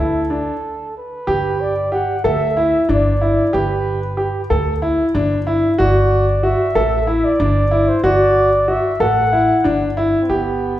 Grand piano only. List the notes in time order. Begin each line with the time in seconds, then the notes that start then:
Already playing: E4
0.30 D4
1.27 G4
1.92 G4
2.24 A4
2.57 E4
2.89 D4
3.21 E4
3.53 G4
4.17 G4
4.50 A4
4.82 E4
5.15 D4
5.47 E4
5.78 F#4
6.43 F#4
6.75 A4
7.07 E4
7.40 D4
7.71 E4
8.04 F#4
8.68 F#4
9.00 A4
9.33 E4
9.64 D4
9.97 E4
10.30 G4